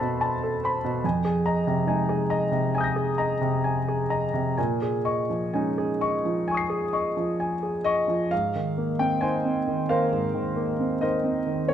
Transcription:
Already playing: A3 C4 A4 C5 A5 B5 C6 E6 B6
0.00 B2
0.21 A5
0.43 A4
0.64 C5 B5
0.84 B2
1.04 F2 G#5
1.25 G#4
1.46 D#5 A#5
1.67 C3
1.87 G#3 D#4 G#5
2.09 G#4
2.30 D#5 A#5
2.52 C3
2.75 G#5 D#6
2.81 G6 A#6
2.96 G#4
3.18 D#5 A#5
3.41 C3
3.64 G#5
3.88 G#4
4.10 D#5 A#5
4.34 C3
4.57 A#2 G#5
4.82 G#4
5.05 D#5 C#6
5.30 F3
5.54 G#3 C#4 D#4 G#5
5.78 G#4
6.01 D#5 C#6
6.25 F3
6.48 G#5 C#6
6.54 D#6 C7
6.70 G#4
6.93 D#5 C#6
7.17 F3
7.40 G#5
7.63 G#4
7.84 D#5 C#6
8.08 F3
8.31 G#2 F5
8.55 D#3
8.78 A#3
8.99 C4 G5
9.21 D#4 C5 D#5 G#5
9.45 C4
9.67 D#3
9.89 A#3 A#4 C5 F5
10.12 G#2
10.34 D#3
10.56 A#3
10.80 C4
11.01 D#4 A#4 C5 D#5
11.24 C4
11.46 D#3
11.68 A#3 C#5

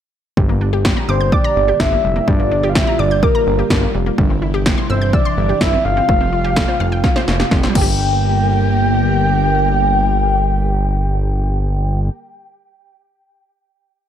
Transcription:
0.37 G1 A#2 D3 G3 D4 G4, kick
0.49 A#3
0.61 D4
0.73 G4
0.85 G5, kick, snare
0.97 A#5
1.09 G1 C5 D6
1.21 G6
1.32 D5 D6, kick
1.44 A#5
1.56 G1
1.68 G4
1.80 G1 D4 E5, kick, snare
1.92 A#3
2.04 F1 G3
2.16 A#3
2.28 G1 G3 F4 D5, kick
2.40 A#3
2.51 D4
2.63 G4
2.69 F5
2.75 E5 G5, kick, snare
2.87 A#5
2.99 G1 D5 D6
3.11 G6
3.23 A#4 D6, kick
3.35 A#5
3.47 G1
3.59 G4
3.70 G1 D4, kick, snare
3.83 A#3
3.94 F1 G3
4.06 A#3
4.18 G1 C3 E3 G3 E4 G4, kick
4.30 C4
4.42 E4
4.54 G4
4.66 G5, kick, snare
4.78 C6
4.90 G1 C5 E6
5.02 G6
5.13 D5 E6, kick
5.25 C6
5.37 G1
5.49 G4
5.61 G1 E4 E5, kick, snare
5.73 C4
5.85 G1 G3 F5
5.97 C4
6.09 F1 G3 A3 F4, kick
6.21 C4
6.33 F4
6.44 G4
6.56 A4, kick, snare
6.68 C5
6.80 F1 F5
6.92 G5
7.04 F5, kick, snare
7.16 C5, snare
7.28 F1, snare
7.40 G4, snare
7.51 F1 F4, kick, snare
7.63 C4, snare
7.69 G3 A#3
7.75 G1 D3 G3 A#3 D4 G4 A#4 G5, kick, crash
7.81 G4

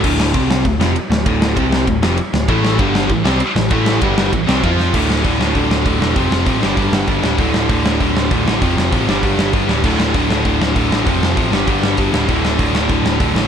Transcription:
0.03 D1 D2 A2 D3, kick, crash
0.20 snare
0.34 C2 C3 G3 C4, kick, ride
0.51 snare
0.65 D1 D2 A2, kick, ride
0.79 F1 F2 C3 F3, snare
0.96 ride
1.10 D1 D2 A2, snare
1.26 D1 D2 A2 D3, kick, ride
1.42 snare
1.56 C2 C3 G3 C4, kick, ride
1.72 snare
1.87 D1 D2 A2, kick, ride
2.02 F1 F2 C3 F3, snare
2.17 ride
2.33 D1 D2 A2, snare
2.48 A1 A2 E3 A3, kick, ride
2.65 snare
2.78 G1 G2 D3 G3, kick, ride
2.95 snare
3.09 A1 A2 E3, kick, ride
3.24 C2 C3 G3 C4, snare
3.40 ride
3.55 A1 A2 E3, snare
3.70 A1 A2 E3 A3, kick, ride
3.86 snare
4.01 G1 G2 D3 G3, kick, ride
4.18 snare
4.32 A1 A2 E3, kick, ride
4.47 C2 C3 G3 C4, snare
4.62 F2 F3 C4 F4, kick, ride
4.80 snare
4.92 D1 D2 A2 D3, kick, crash
5.09 D1, snare
5.23 D1 D2 A2 D3, kick, open hi-hat
5.39 D1 D2 A2 D3, snare
5.54 D1 D2 A2 D3, kick, open hi-hat
5.71 D1, snare
5.84 D1 D2 A2 D3, kick, open hi-hat
5.99 E1 D2 A2 D3, snare
6.14 F1 F2 C3 F3, kick, open hi-hat
6.31 F1, snare
6.46 A1 F2 C3 F3, kick, open hi-hat
6.61 G1 G2 D3 G3, snare
6.76 G1 G2 D3 G3, kick, open hi-hat
6.93 G1, snare
7.07 G1 G2 D3 G3, kick, open hi-hat
7.22 D1 G2 D3 G3, snare
7.38 D1 D2 A2 D3, kick, open hi-hat
7.54 D1, snare
7.69 D1 D2 A2 D3, kick, open hi-hat
7.84 D1 D2 A2 D3, snare
8.00 D1 D2 A2 D3, kick, open hi-hat
8.15 D1, snare
8.31 D1 D2 A2 D3, kick, open hi-hat
8.46 A1 D2 A2 D3, snare
8.61 F1 F2 C3 F3, kick, open hi-hat
8.77 F1, snare
8.91 A1 F2 C3 F3, kick, open hi-hat
9.07 G1 G2 D3 G3, snare
9.23 G1 G2 D3 G3, kick, open hi-hat
9.39 G1, snare
9.53 G1 G2 D3 G3, kick, open hi-hat
9.68 D1 G2 D3 G3, snare
9.83 D1 D2 A2 D3, kick, crash
9.99 D1, snare
10.14 D1 D2 A2 D3, kick, open hi-hat
10.29 D1 D2 A2 D3, snare
10.44 D1 D2 A2 D3, kick, open hi-hat
10.61 D1, snare
10.76 D1 D2 A2 D3, kick, open hi-hat
10.91 A1 D2 A2 D3, snare
11.05 F1 F2 C3 F3, kick, open hi-hat
11.22 F1, snare
11.36 A1 F2 C3 F3, kick, open hi-hat
11.51 G1 G2 D3 G3, snare
11.66 G1 G2 D3 G3, kick, open hi-hat
11.83 G1, snare
11.97 G1 G2 D3 G3, kick, open hi-hat
12.12 D1 G2 D3 G3, snare
12.27 D1 D2 A2 D3, kick, open hi-hat
12.42 D1, snare
12.57 D1 D2 A2 D3, kick, open hi-hat
12.73 D1 D2 A2 D3, snare
12.88 D1 D2 A2 D3, kick, open hi-hat
13.04 D1, snare
13.18 D1 D2 A2 D3, kick, open hi-hat
13.34 A1 D2 A2 D3, snare

